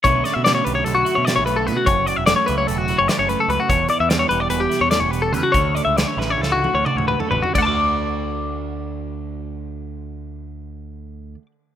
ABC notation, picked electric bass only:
X:1
M:9/8
L:1/16
Q:3/8=95
K:D
V:1 name="Picked electric bass" clef=bass
B,,,2 z B,,3 B,,,2 B,,,2 z B,,2 B,,,3 B,, z | F,,,3 E,,,2 z C,,2 E,,,3 F,,, z F,,,2 z C,, z | E,,,2 z E,,3 E,,,2 E,,,2 z E,,2 E,,,3 E,, z | D,,3 C,,2 z A,,,2 C,,3 D,, z D,,2 z A,,, z |
D,,16- D,,2- | D,,16- D,,2 |]